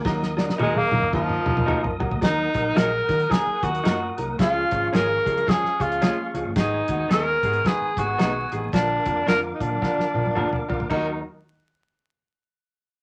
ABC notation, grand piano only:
X:1
M:4/4
L:1/8
Q:"Swing" 1/4=110
K:Ebm
V:1 name="Grand piano"
[G,B,E] [G,B,=D] [G,B,E] [G,B,E] [G,B,E] [G,B,E] [G,B,E] [G,B,G] | [G,B,EB] [G,B,EB] [G,B,EA] [G,B,EB] [G,B,EB] [G,B,EG] [G,B,EF] [G,B,EB] | [F,A,DA] [F,A,DF] [F,A,DA] [F,A,DA] [F,A,DA] [F,A,DA] [F,A,DA] [F,A,DF] | [E,A,CA] [E,A,CG] [E,A,CA] [E,A,CA] [E,A,Cc] [E,A,CA] [E,A,CA] [E,A,CA] |
[=D,F,B,F] [D,F,B,F] [D,F,B,F] [D,F,B,F] [D,F,B,F] [D,F,B,F] [D,F,B,F] [D,F,B,F] | [E,G,B,G] z6 z |]